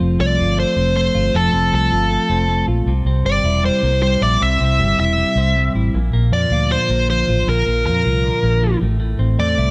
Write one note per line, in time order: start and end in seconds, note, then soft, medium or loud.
0.00 0.17 F1 medium
0.00 1.33 F3 medium
0.00 0.19 A3 medium
0.00 0.76 C4 soft
0.00 0.38 F4 medium
0.19 0.40 C2 medium
0.19 0.56 A3 soft
0.19 0.59 D5 medium
0.39 0.63 G1 medium
0.39 1.14 F4 medium
0.57 0.95 A3 medium
0.57 0.95 C5 medium
0.76 1.09 F1 medium
0.76 1.53 C4 medium
0.96 1.71 A3 medium
0.96 1.36 C5 medium
1.15 1.31 G1 medium
1.15 1.90 F4 medium
1.34 1.51 F1 medium
1.34 2.87 F3 medium
1.34 1.74 A4 medium
1.53 1.70 F1 medium
1.53 2.30 C4 medium
1.72 1.89 C2 medium
1.72 2.10 A3 medium
1.72 2.66 A4 medium
1.91 2.16 G1 medium
1.91 2.67 F4 medium
2.11 2.48 A3 medium
2.29 2.62 F1 medium
2.29 3.06 C4 medium
2.49 2.92 A3 medium
2.68 2.84 A#1 medium
2.68 2.91 F4 medium
2.86 3.03 C2 medium
2.86 4.40 C3 medium
3.05 3.22 C2 medium
3.05 3.83 C4 medium
3.24 3.41 G1 medium
3.24 3.62 G3 medium
3.24 3.65 D5 medium
3.44 3.69 E1 medium
3.44 4.21 E4 medium
3.63 4.01 G3 medium
3.63 4.01 C5 medium
3.83 4.16 C2 loud
3.83 3.93 A#3 medium
3.93 4.59 C4 soft
4.02 4.78 G3 medium
4.02 4.22 C5 medium
4.21 4.38 A#1 medium
4.21 4.98 E4 medium
4.21 4.42 D5 medium
4.41 4.58 C2 medium
4.41 5.94 C3 medium
4.41 4.98 E5 medium
4.60 4.80 C2 medium
4.60 5.36 C4 medium
4.79 4.96 G1 medium
4.79 5.17 G3 medium
4.98 5.23 E1 medium
4.98 5.74 E4 medium
4.98 5.72 E5 medium
5.18 5.55 G3 medium
5.36 5.69 C2 medium
5.36 5.99 C4 medium
5.57 5.98 G3 medium
5.75 5.91 A1 medium
5.75 5.98 E4 medium
5.94 6.11 A#1 medium
5.94 7.46 A#2 medium
6.13 6.30 A#1 medium
6.13 6.89 A#3 medium
6.32 6.48 F2 medium
6.32 7.08 F3 soft
6.32 6.72 D5 medium
6.50 6.75 D2 medium
6.50 7.27 F4 medium
6.72 8.22 D3 medium
6.72 7.07 C5 medium
6.89 7.22 A#1 medium
6.89 7.65 A#3 medium
7.10 7.85 F3 medium
7.10 7.49 C5 medium
7.28 7.45 A1 medium
7.28 8.03 F4 medium
7.47 7.64 A#1 loud
7.47 8.81 A#2 medium
7.47 7.85 A#4 medium
7.66 7.87 A#1 medium
7.66 8.42 A#3 medium
7.86 8.02 F2 medium
7.86 8.61 F3 soft
7.86 8.78 A#4 medium
8.05 8.30 C2 medium
8.05 8.85 F4 medium
8.24 8.85 D3 medium
8.43 8.76 A#1 medium
8.43 8.85 A#3 medium
8.62 8.85 F3 medium
8.81 9.14 A1 medium
8.81 8.99 A2 medium
9.00 9.71 A2 medium
9.19 9.36 A1 medium
9.19 9.71 C4 medium
9.39 9.55 E2 medium
9.39 9.71 A3 medium
9.39 9.71 D5 medium
9.58 9.71 C2 medium
9.58 9.71 E4 medium